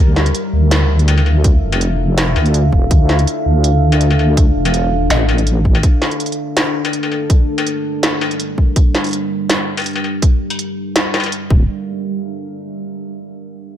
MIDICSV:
0, 0, Header, 1, 5, 480
1, 0, Start_track
1, 0, Key_signature, -1, "minor"
1, 0, Tempo, 365854
1, 1895, Time_signature, 4, 2, 24, 8
1, 18066, End_track
2, 0, Start_track
2, 0, Title_t, "Ambient pad"
2, 0, Program_c, 0, 92
2, 0, Note_on_c, 0, 62, 85
2, 0, Note_on_c, 0, 69, 79
2, 0, Note_on_c, 0, 76, 77
2, 0, Note_on_c, 0, 77, 92
2, 7601, Note_off_c, 0, 69, 0
2, 7602, Note_off_c, 0, 76, 0
2, 7602, Note_off_c, 0, 77, 0
2, 7652, Note_on_c, 0, 55, 88
2, 7654, Note_on_c, 0, 69, 76
2, 7654, Note_on_c, 0, 70, 91
2, 11456, Note_off_c, 0, 69, 0
2, 11493, Note_on_c, 0, 67, 79
2, 15041, Note_off_c, 0, 55, 0
2, 15041, Note_off_c, 0, 62, 0
2, 15042, Note_off_c, 0, 70, 0
2, 15058, Note_off_c, 0, 67, 0
2, 18066, End_track
3, 0, Start_track
3, 0, Title_t, "Wobble bass"
3, 0, Program_c, 1, 39
3, 0, Note_on_c, 1, 38, 94
3, 437, Note_off_c, 1, 38, 0
3, 695, Note_on_c, 1, 38, 92
3, 2117, Note_off_c, 1, 38, 0
3, 2137, Note_on_c, 1, 29, 97
3, 3078, Note_off_c, 1, 29, 0
3, 3097, Note_on_c, 1, 38, 95
3, 3557, Note_off_c, 1, 38, 0
3, 3575, Note_on_c, 1, 28, 99
3, 3797, Note_off_c, 1, 28, 0
3, 3815, Note_on_c, 1, 38, 98
3, 4277, Note_off_c, 1, 38, 0
3, 4536, Note_on_c, 1, 38, 96
3, 5957, Note_off_c, 1, 38, 0
3, 5977, Note_on_c, 1, 28, 97
3, 6678, Note_off_c, 1, 28, 0
3, 6695, Note_on_c, 1, 33, 95
3, 7637, Note_off_c, 1, 33, 0
3, 15094, Note_on_c, 1, 26, 100
3, 15317, Note_off_c, 1, 26, 0
3, 18066, End_track
4, 0, Start_track
4, 0, Title_t, "Struck metal"
4, 1416, Note_on_c, 9, 77, 81
4, 1542, Note_off_c, 9, 77, 0
4, 1542, Note_on_c, 9, 77, 54
4, 1654, Note_off_c, 9, 77, 0
4, 1654, Note_on_c, 9, 77, 37
4, 1785, Note_off_c, 9, 77, 0
4, 2263, Note_on_c, 9, 77, 84
4, 2394, Note_off_c, 9, 77, 0
4, 3095, Note_on_c, 9, 77, 73
4, 3227, Note_off_c, 9, 77, 0
4, 5145, Note_on_c, 9, 77, 68
4, 5276, Note_off_c, 9, 77, 0
4, 5386, Note_on_c, 9, 77, 51
4, 5500, Note_off_c, 9, 77, 0
4, 5500, Note_on_c, 9, 77, 36
4, 5631, Note_off_c, 9, 77, 0
4, 6105, Note_on_c, 9, 77, 79
4, 6236, Note_off_c, 9, 77, 0
4, 6936, Note_on_c, 9, 77, 71
4, 7067, Note_off_c, 9, 77, 0
4, 7541, Note_on_c, 9, 77, 56
4, 7672, Note_off_c, 9, 77, 0
4, 8983, Note_on_c, 9, 77, 73
4, 9115, Note_off_c, 9, 77, 0
4, 9223, Note_on_c, 9, 77, 50
4, 9336, Note_off_c, 9, 77, 0
4, 9336, Note_on_c, 9, 77, 36
4, 9467, Note_off_c, 9, 77, 0
4, 9944, Note_on_c, 9, 77, 77
4, 10075, Note_off_c, 9, 77, 0
4, 10776, Note_on_c, 9, 77, 75
4, 10907, Note_off_c, 9, 77, 0
4, 12824, Note_on_c, 9, 77, 75
4, 12955, Note_off_c, 9, 77, 0
4, 13061, Note_on_c, 9, 77, 53
4, 13175, Note_off_c, 9, 77, 0
4, 13175, Note_on_c, 9, 77, 37
4, 13306, Note_off_c, 9, 77, 0
4, 13780, Note_on_c, 9, 77, 82
4, 13912, Note_off_c, 9, 77, 0
4, 14614, Note_on_c, 9, 77, 77
4, 14694, Note_off_c, 9, 77, 0
4, 14694, Note_on_c, 9, 77, 63
4, 14775, Note_off_c, 9, 77, 0
4, 14775, Note_on_c, 9, 77, 47
4, 14907, Note_off_c, 9, 77, 0
4, 18066, End_track
5, 0, Start_track
5, 0, Title_t, "Drums"
5, 214, Note_on_c, 9, 38, 64
5, 341, Note_on_c, 9, 42, 38
5, 346, Note_off_c, 9, 38, 0
5, 454, Note_off_c, 9, 42, 0
5, 454, Note_on_c, 9, 42, 68
5, 585, Note_off_c, 9, 42, 0
5, 936, Note_on_c, 9, 38, 114
5, 936, Note_on_c, 9, 42, 81
5, 1067, Note_off_c, 9, 38, 0
5, 1067, Note_off_c, 9, 42, 0
5, 1303, Note_on_c, 9, 42, 35
5, 1416, Note_off_c, 9, 42, 0
5, 1416, Note_on_c, 9, 42, 69
5, 1547, Note_off_c, 9, 42, 0
5, 1894, Note_on_c, 9, 42, 83
5, 1895, Note_on_c, 9, 36, 115
5, 2025, Note_off_c, 9, 42, 0
5, 2026, Note_off_c, 9, 36, 0
5, 2263, Note_on_c, 9, 42, 38
5, 2376, Note_off_c, 9, 42, 0
5, 2376, Note_on_c, 9, 42, 66
5, 2507, Note_off_c, 9, 42, 0
5, 2855, Note_on_c, 9, 38, 124
5, 2855, Note_on_c, 9, 42, 83
5, 2986, Note_off_c, 9, 38, 0
5, 2986, Note_off_c, 9, 42, 0
5, 3222, Note_on_c, 9, 42, 37
5, 3335, Note_off_c, 9, 42, 0
5, 3335, Note_on_c, 9, 42, 69
5, 3466, Note_off_c, 9, 42, 0
5, 3575, Note_on_c, 9, 36, 60
5, 3706, Note_off_c, 9, 36, 0
5, 3816, Note_on_c, 9, 36, 115
5, 3816, Note_on_c, 9, 42, 81
5, 3947, Note_off_c, 9, 36, 0
5, 3948, Note_off_c, 9, 42, 0
5, 4056, Note_on_c, 9, 38, 65
5, 4184, Note_on_c, 9, 42, 38
5, 4187, Note_off_c, 9, 38, 0
5, 4296, Note_off_c, 9, 42, 0
5, 4296, Note_on_c, 9, 42, 63
5, 4427, Note_off_c, 9, 42, 0
5, 4777, Note_on_c, 9, 42, 83
5, 4908, Note_off_c, 9, 42, 0
5, 5145, Note_on_c, 9, 42, 34
5, 5258, Note_off_c, 9, 42, 0
5, 5258, Note_on_c, 9, 42, 67
5, 5389, Note_off_c, 9, 42, 0
5, 5735, Note_on_c, 9, 36, 118
5, 5738, Note_on_c, 9, 42, 80
5, 5866, Note_off_c, 9, 36, 0
5, 5869, Note_off_c, 9, 42, 0
5, 6105, Note_on_c, 9, 42, 38
5, 6216, Note_off_c, 9, 42, 0
5, 6216, Note_on_c, 9, 42, 62
5, 6347, Note_off_c, 9, 42, 0
5, 6695, Note_on_c, 9, 38, 126
5, 6695, Note_on_c, 9, 42, 81
5, 6826, Note_off_c, 9, 38, 0
5, 6826, Note_off_c, 9, 42, 0
5, 7062, Note_on_c, 9, 42, 32
5, 7173, Note_off_c, 9, 42, 0
5, 7173, Note_on_c, 9, 42, 60
5, 7304, Note_off_c, 9, 42, 0
5, 7414, Note_on_c, 9, 36, 61
5, 7545, Note_off_c, 9, 36, 0
5, 7653, Note_on_c, 9, 42, 74
5, 7654, Note_on_c, 9, 36, 110
5, 7784, Note_off_c, 9, 42, 0
5, 7785, Note_off_c, 9, 36, 0
5, 7893, Note_on_c, 9, 38, 62
5, 8022, Note_on_c, 9, 42, 33
5, 8025, Note_off_c, 9, 38, 0
5, 8135, Note_off_c, 9, 42, 0
5, 8135, Note_on_c, 9, 42, 59
5, 8214, Note_off_c, 9, 42, 0
5, 8214, Note_on_c, 9, 42, 48
5, 8295, Note_off_c, 9, 42, 0
5, 8295, Note_on_c, 9, 42, 41
5, 8426, Note_off_c, 9, 42, 0
5, 8615, Note_on_c, 9, 38, 126
5, 8615, Note_on_c, 9, 42, 77
5, 8746, Note_off_c, 9, 38, 0
5, 8746, Note_off_c, 9, 42, 0
5, 8983, Note_on_c, 9, 42, 32
5, 9096, Note_off_c, 9, 42, 0
5, 9096, Note_on_c, 9, 42, 63
5, 9227, Note_off_c, 9, 42, 0
5, 9575, Note_on_c, 9, 36, 109
5, 9577, Note_on_c, 9, 42, 74
5, 9706, Note_off_c, 9, 36, 0
5, 9708, Note_off_c, 9, 42, 0
5, 9944, Note_on_c, 9, 42, 35
5, 10057, Note_off_c, 9, 42, 0
5, 10057, Note_on_c, 9, 42, 60
5, 10188, Note_off_c, 9, 42, 0
5, 10536, Note_on_c, 9, 38, 114
5, 10536, Note_on_c, 9, 42, 74
5, 10667, Note_off_c, 9, 38, 0
5, 10667, Note_off_c, 9, 42, 0
5, 10904, Note_on_c, 9, 42, 33
5, 11016, Note_off_c, 9, 42, 0
5, 11016, Note_on_c, 9, 42, 61
5, 11147, Note_off_c, 9, 42, 0
5, 11255, Note_on_c, 9, 36, 57
5, 11386, Note_off_c, 9, 36, 0
5, 11495, Note_on_c, 9, 36, 107
5, 11495, Note_on_c, 9, 42, 73
5, 11626, Note_off_c, 9, 36, 0
5, 11626, Note_off_c, 9, 42, 0
5, 11737, Note_on_c, 9, 38, 62
5, 11864, Note_on_c, 9, 42, 35
5, 11868, Note_off_c, 9, 38, 0
5, 11894, Note_off_c, 9, 42, 0
5, 11894, Note_on_c, 9, 42, 29
5, 11922, Note_off_c, 9, 42, 0
5, 11922, Note_on_c, 9, 42, 24
5, 11951, Note_off_c, 9, 42, 0
5, 11951, Note_on_c, 9, 42, 19
5, 11979, Note_off_c, 9, 42, 0
5, 11979, Note_on_c, 9, 42, 62
5, 12110, Note_off_c, 9, 42, 0
5, 12458, Note_on_c, 9, 38, 113
5, 12458, Note_on_c, 9, 42, 76
5, 12589, Note_off_c, 9, 38, 0
5, 12589, Note_off_c, 9, 42, 0
5, 12824, Note_on_c, 9, 42, 31
5, 12851, Note_off_c, 9, 42, 0
5, 12851, Note_on_c, 9, 42, 25
5, 12879, Note_off_c, 9, 42, 0
5, 12879, Note_on_c, 9, 42, 20
5, 12908, Note_off_c, 9, 42, 0
5, 12908, Note_on_c, 9, 42, 17
5, 12936, Note_off_c, 9, 42, 0
5, 12936, Note_on_c, 9, 42, 63
5, 12968, Note_off_c, 9, 42, 0
5, 12968, Note_on_c, 9, 42, 13
5, 13030, Note_off_c, 9, 42, 0
5, 13030, Note_on_c, 9, 42, 8
5, 13161, Note_off_c, 9, 42, 0
5, 13414, Note_on_c, 9, 36, 110
5, 13414, Note_on_c, 9, 42, 77
5, 13545, Note_off_c, 9, 36, 0
5, 13545, Note_off_c, 9, 42, 0
5, 13780, Note_on_c, 9, 42, 38
5, 13893, Note_off_c, 9, 42, 0
5, 13893, Note_on_c, 9, 42, 69
5, 14025, Note_off_c, 9, 42, 0
5, 14375, Note_on_c, 9, 38, 122
5, 14375, Note_on_c, 9, 42, 85
5, 14506, Note_off_c, 9, 38, 0
5, 14506, Note_off_c, 9, 42, 0
5, 14614, Note_on_c, 9, 38, 57
5, 14741, Note_on_c, 9, 42, 35
5, 14745, Note_off_c, 9, 38, 0
5, 14855, Note_off_c, 9, 42, 0
5, 14855, Note_on_c, 9, 42, 64
5, 14986, Note_off_c, 9, 42, 0
5, 15094, Note_on_c, 9, 36, 104
5, 15225, Note_off_c, 9, 36, 0
5, 18066, End_track
0, 0, End_of_file